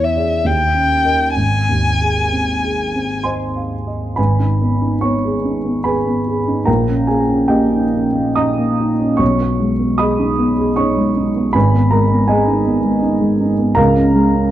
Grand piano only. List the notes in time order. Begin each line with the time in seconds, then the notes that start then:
Already playing: E2 E4
0.16 G#4 D5
0.44 D#2
0.74 C#4
1.05 A#4 D#5
1.36 G#1
1.69 D#2
2.01 G#4
2.32 C4
2.64 G#4
2.96 C4
3.23 C5 D#5 G#5 C6
3.56 F5
3.87 D#5
4.16 G#1 B4 G#5 B5
4.39 D#4
4.62 B3
4.82 D#4
5.01 B3 C#5 C#6
5.25 G#4
5.45 D#4
5.65 B3
5.84 G#4 B4 G#5 B5
6.07 B3
6.27 G#4
6.48 D#4
6.65 A#1 A#4 G5 A#5
6.88 C#4
7.07 A#3 G#4 G#5
7.29 C#4
7.48 A#3 G4 D#5 G5
7.71 D#4
7.92 C#4
8.14 A#3
8.35 D#4 D#5 A#5 D#6
8.58 A#3
8.79 D#4
8.99 C#4
9.17 B1 C#5 C#6
9.40 B3
9.60 G#3
9.79 B3
9.98 G#4 D#5 B5 D#6
10.19 D#4
10.39 B3
10.58 G#4
10.76 D#4 C#5 C#6
10.97 G#3
11.17 D#4
11.36 B3
11.53 G#1 B4 G#5 B5
11.74 B3
11.91 G#3 A#4 A#5
12.11 B3
12.28 G#3 G#4 D#5 G#5
12.48 D#4
12.66 B3
12.84 G#3
13.02 D#4
13.21 G#3
13.41 D#4
13.58 B3
13.75 C#2 A#4 F5 A#5
13.96 C#4
14.16 G#3
14.35 C#4